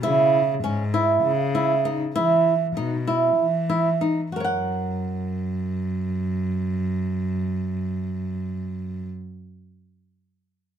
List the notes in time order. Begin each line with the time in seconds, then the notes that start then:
0.03 C#3 E4
0.64 G#2 C#4
0.94 E4
1.24 C#3
1.55 E4
1.85 D#4
2.15 E3 E4
2.76 B2 D#4
3.07 E4
3.38 E3
3.70 E4
4.01 D#4
4.32 F#2 F#4
4.36 A#4
4.40 C#5
4.44 F#5